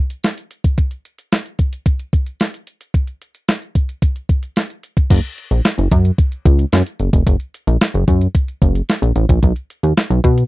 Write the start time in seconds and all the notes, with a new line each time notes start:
0.10 closed hi-hat
0.24 snare, closed hi-hat
0.38 closed hi-hat
0.51 closed hi-hat
0.64 kick, closed hi-hat
0.78 kick, closed hi-hat
0.91 closed hi-hat
1.05 closed hi-hat
1.18 closed hi-hat
1.32 snare, closed hi-hat
1.46 closed hi-hat
1.59 kick, closed hi-hat
1.73 closed hi-hat
1.86 kick, closed hi-hat
2.00 closed hi-hat
2.13 kick, closed hi-hat
2.27 closed hi-hat
2.40 snare, closed hi-hat
2.54 closed hi-hat
2.67 closed hi-hat
2.81 closed hi-hat
2.94 kick, closed hi-hat
3.07 closed hi-hat
3.22 closed hi-hat
3.35 closed hi-hat
3.48 snare, closed hi-hat
3.62 closed hi-hat
3.75 kick, closed hi-hat
3.89 closed hi-hat
4.02 kick, closed hi-hat
4.16 closed hi-hat
4.29 kick, closed hi-hat
4.43 closed hi-hat
4.56 snare, closed hi-hat
4.70 closed hi-hat
4.83 closed hi-hat
4.97 kick, closed hi-hat
5.10 F#1, kick, closed hi-hat, crash
5.24 closed hi-hat
5.38 closed hi-hat
5.51 A#1, closed hi-hat
5.65 snare, closed hi-hat
5.78 F#1, closed hi-hat
5.91 F#2, kick, closed hi-hat
6.05 closed hi-hat
6.18 kick, closed hi-hat
6.32 closed hi-hat
6.45 C#2, kick, closed hi-hat
6.59 closed hi-hat
6.72 F#2, snare, closed hi-hat
6.86 closed hi-hat
7.00 F#1, closed hi-hat
7.13 F1, kick, closed hi-hat
7.27 F#1, kick, closed hi-hat
7.40 closed hi-hat
7.54 closed hi-hat
7.67 A#1, closed hi-hat
7.81 snare, closed hi-hat
7.94 F#1, closed hi-hat
8.08 F#2, kick, closed hi-hat
8.21 closed hi-hat
8.35 kick, closed hi-hat
8.48 closed hi-hat
8.62 F#1, kick, closed hi-hat
8.75 closed hi-hat
8.89 snare, closed hi-hat
9.02 A#1, closed hi-hat
9.16 A1, closed hi-hat
9.29 A#1, kick, closed hi-hat
9.43 B1, kick, closed hi-hat
9.56 closed hi-hat
9.70 closed hi-hat
9.83 D#2, closed hi-hat
9.97 snare, closed hi-hat
10.10 B1, closed hi-hat
10.24 B2, kick, closed hi-hat
10.38 closed hi-hat